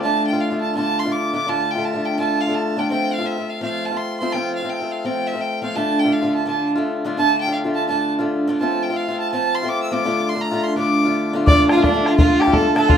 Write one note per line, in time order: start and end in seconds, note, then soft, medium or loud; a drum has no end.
0.03 0.33 D3 soft
0.03 0.33 A3 medium
0.03 0.33 D4 medium
0.03 0.32 F4 medium
0.03 0.24 A5 medium
0.27 0.42 G5 medium
0.33 0.52 D3 soft
0.33 0.51 A3 soft
0.33 0.50 D4 soft
0.33 0.49 F4 soft
0.41 0.61 F5 medium
0.50 0.74 D3 soft
0.50 0.75 A3 soft
0.50 0.76 D4 soft
0.50 0.75 F4 soft
0.61 0.74 A5 medium
0.75 1.05 D3 soft
0.75 1.05 A3 soft
0.75 1.05 D4 medium
0.75 1.04 F4 medium
0.75 1.01 A5 medium
0.99 1.13 C6 medium
1.05 1.32 D3 soft
1.05 1.33 A3 soft
1.05 1.34 D4 soft
1.05 1.34 F4 soft
1.12 1.34 D6 medium
1.33 1.45 D3 medium
1.33 1.46 A3 soft
1.33 1.47 D4 medium
1.33 1.48 F4 medium
1.33 1.51 D6 medium
1.46 1.76 D3 medium
1.46 1.76 A3 medium
1.46 1.75 D4 medium
1.46 1.74 F4 medium
1.46 1.72 A5 medium
1.71 1.86 G5 medium
1.75 1.95 D3 soft
1.75 1.94 A3 soft
1.75 1.93 D4 soft
1.75 1.92 F4 soft
1.84 2.07 A5 medium
1.93 2.16 D3 soft
1.93 2.18 A3 soft
1.93 2.18 D4 soft
1.93 2.18 F4 soft
2.05 2.19 G5 medium
2.17 2.47 D3 medium
2.17 2.48 A3 medium
2.17 2.47 D4 soft
2.17 2.46 F4 medium
2.17 2.43 A5 medium
2.41 2.56 F5 medium
2.47 2.76 D3 soft
2.47 2.77 A3 soft
2.47 2.77 D4 soft
2.47 2.76 F4 soft
2.55 2.80 A5 medium
2.77 2.90 D3 medium
2.77 2.90 A3 medium
2.77 2.91 D4 medium
2.77 2.91 F4 medium
2.77 2.90 G5 medium
2.90 3.19 F3 soft
2.90 3.19 A3 medium
2.90 3.19 C4 soft
2.90 3.17 F4 medium
2.90 3.15 G5 medium
3.14 3.28 F5 medium
3.19 3.37 A3 soft
3.19 3.38 C4 soft
3.19 3.36 F4 soft
3.26 3.51 E5 medium
3.38 3.62 A3 soft
3.38 3.61 C4 soft
3.38 3.62 F4 soft
3.50 3.62 F5 medium
3.61 3.90 F3 medium
3.61 3.91 A3 medium
3.61 3.91 C4 medium
3.61 3.90 F4 medium
3.61 3.87 F5 medium
3.85 3.99 A5 medium
3.91 4.21 A3 soft
3.91 4.20 C4 soft
3.91 4.20 F4 soft
3.97 4.19 C6 medium
4.20 4.33 F3 soft
4.20 4.34 A3 medium
4.20 4.34 C4 medium
4.20 4.35 F4 medium
4.20 4.34 C6 medium
4.33 4.63 F3 soft
4.33 4.63 A3 medium
4.33 4.63 C4 soft
4.33 4.61 F4 medium
4.33 4.55 G5 medium
4.56 4.71 F5 medium
4.62 4.81 A3 soft
4.62 4.81 C4 soft
4.62 4.79 F4 soft
4.69 4.93 G5 medium
4.80 5.05 A3 soft
4.80 5.04 C4 soft
4.80 5.05 F4 soft
4.91 5.07 F5 medium
5.05 5.34 F3 soft
5.05 5.34 A3 medium
5.05 5.34 C4 medium
5.05 5.32 F4 medium
5.05 5.29 G5 medium
5.27 5.42 E5 medium
5.33 5.62 A3 soft
5.33 5.61 C4 soft
5.33 5.63 F4 soft
5.41 5.63 G5 medium
5.62 5.75 F3 soft
5.62 5.75 A3 soft
5.62 5.76 C4 medium
5.62 5.77 F4 soft
5.62 5.77 F5 medium
5.76 6.05 D3 soft
5.76 6.05 A3 medium
5.76 6.04 D4 medium
5.76 6.03 F4 medium
5.76 6.01 A5 medium
5.99 6.14 G5 medium
6.04 6.23 D3 soft
6.04 6.22 A3 soft
6.04 6.21 D4 soft
6.04 6.20 F4 soft
6.12 6.34 F5 medium
6.22 6.44 D3 soft
6.22 6.46 A3 soft
6.22 6.46 D4 soft
6.22 6.47 F4 soft
6.35 6.47 A5 medium
6.46 6.76 D3 soft
6.46 6.76 A3 soft
6.46 6.76 D4 soft
6.46 6.74 F4 medium
6.46 6.69 A5 medium
6.75 7.03 D3 soft
6.75 7.04 A3 soft
6.75 7.05 D4 soft
6.75 7.05 F4 medium
7.05 7.16 D3 medium
7.05 7.17 A3 medium
7.05 7.18 D4 medium
7.05 7.19 F4 medium
7.17 7.47 D3 soft
7.17 7.47 A3 medium
7.17 7.46 D4 medium
7.17 7.46 F4 medium
7.17 7.39 A5 medium
7.41 7.52 G5 medium
7.47 7.65 D3 soft
7.47 7.65 A3 soft
7.47 7.64 D4 soft
7.47 7.63 F4 soft
7.52 7.54 F5 medium
7.52 7.55 G5 medium
7.64 7.87 D3 soft
7.64 7.88 A3 soft
7.64 7.89 D4 soft
7.64 7.89 F4 soft
7.75 7.88 A5 medium
7.89 8.18 D3 medium
7.89 8.19 A3 medium
7.89 8.18 D4 medium
7.89 8.18 F4 medium
7.89 8.11 A5 medium
8.19 8.46 D3 soft
8.19 8.48 A3 soft
8.19 8.48 D4 soft
8.19 8.48 F4 medium
8.48 8.60 D3 medium
8.48 8.61 A3 medium
8.48 8.62 D4 medium
8.48 8.62 F4 medium
8.60 8.90 F3 soft
8.60 8.90 A3 medium
8.60 8.91 C4 medium
8.60 8.89 F4 medium
8.60 8.84 A5 medium
8.83 8.98 G5 medium
8.90 9.09 A3 soft
8.90 9.09 C4 soft
8.90 9.07 F4 soft
8.96 9.19 F5 medium
9.09 9.33 A3 soft
9.09 9.32 C4 soft
9.09 9.33 F4 soft
9.19 9.31 A5 medium
9.32 9.62 F3 medium
9.32 9.63 A3 medium
9.32 9.62 C4 soft
9.32 9.61 F4 medium
9.32 9.56 A5 medium
9.55 9.70 C6 medium
9.63 9.92 A3 soft
9.63 9.91 C4 soft
9.63 9.91 F4 medium
9.69 9.82 D6 medium
9.83 9.94 E6 medium
9.91 10.04 F3 medium
9.91 10.05 A3 medium
9.91 10.05 C4 medium
9.91 10.06 F4 medium
9.91 10.31 D6 medium
10.05 10.34 D3 medium
10.05 10.34 A3 medium
10.05 10.34 D4 medium
10.05 10.32 F4 medium
10.29 10.43 C6 medium
10.34 10.53 D3 soft
10.34 10.52 A3 soft
10.34 10.51 D4 soft
10.34 10.50 F4 soft
10.41 10.65 A#5 medium
10.51 10.75 D3 soft
10.51 10.76 A3 soft
10.51 10.76 D4 soft
10.51 10.76 F4 soft
10.63 10.76 C6 medium
10.76 11.05 D3 soft
10.76 11.05 A3 medium
10.76 11.05 D4 medium
10.76 11.04 F4 medium
10.76 11.31 D6 medium
11.05 11.32 D3 soft
11.05 11.34 A3 soft
11.05 11.34 D4 soft
11.05 11.34 F4 medium
11.33 11.47 D3 medium
11.33 11.48 A3 medium
11.33 11.48 D4 medium
11.33 11.48 F4 medium
11.46 11.77 D3 medium
11.46 11.77 A3 medium
11.46 11.77 D4 medium
11.46 11.68 D5 loud
11.46 11.68 D5 medium
11.46 11.70 D6 medium
11.46 bodhran medium
11.50 11.76 F4 medium
11.69 11.82 F4 medium
11.69 11.84 F4 medium
11.69 11.85 F5 medium
11.69 bodhran medium
11.77 11.96 D3 soft
11.77 11.94 A3 soft
11.77 11.93 D4 medium
11.77 11.93 F4 medium
11.83 12.08 D4 medium
11.83 12.04 D4 medium
11.83 12.06 D5 medium
11.83 bodhran medium
11.94 12.17 D3 soft
11.94 12.18 A3 soft
11.94 12.19 D4 soft
11.94 12.18 F4 medium
12.04 12.18 F4 medium
12.04 12.17 F4 medium
12.04 12.17 F5 medium
12.04 bodhran medium
12.17 12.47 D3 medium
12.17 12.48 A3 medium
12.17 12.47 D4 medium
12.17 12.41 F4 medium
12.17 12.40 F4 medium
12.17 12.46 F4 medium
12.17 12.41 F5 medium
12.17 bodhran medium
12.40 12.54 G4 medium
12.40 12.54 G5 medium
12.40 bodhran medium
12.47 12.74 D3 soft
12.47 12.75 A3 soft
12.47 12.76 D4 medium
12.47 12.76 F4 medium
12.47 bodhran soft
12.53 12.76 A4 medium
12.53 12.75 A4 medium
12.53 12.74 A5 medium
12.53 bodhran medium
12.74 12.87 D3 medium
12.74 12.88 A3 medium
12.74 12.89 D4 medium
12.74 12.90 F4 medium
12.74 12.89 A4 medium
12.74 12.91 A4 medium
12.74 12.90 A5 medium
12.74 bodhran medium
12.88 12.98 D3 medium
12.88 12.98 A3 medium
12.88 12.98 D4 medium
12.88 12.98 F4 medium
12.88 12.98 F5 medium
12.88 bodhran medium